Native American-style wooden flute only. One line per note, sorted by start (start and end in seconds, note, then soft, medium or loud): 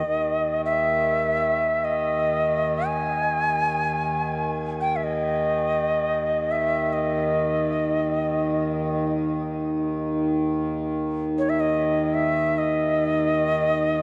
0.00 0.62 D#5 medium
0.65 1.86 E5 medium
1.84 2.89 D#5 medium
2.87 4.53 G#5 loud
4.81 4.98 G5 medium
4.96 5.05 E5 medium
5.04 6.53 D#5 medium
6.51 6.94 E5 medium
6.93 9.16 D#5 medium
11.39 11.51 C#5 medium
11.49 11.62 E5 medium
11.60 12.16 D#5 medium
12.14 12.60 E5 medium
12.58 14.02 D#5 medium